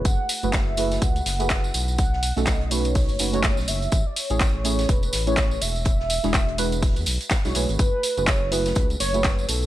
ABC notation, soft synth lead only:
X:1
M:4/4
L:1/16
Q:"Swing 16ths" 1/4=124
K:F#m
V:1 name="Soft synth lead"
f4 e4 f8 | f4 ^d2 c8 e2- | e d c6 B4 c2 e2- | e8- e2 z6 |
B4 c2 B2 B2 c4 A2 |]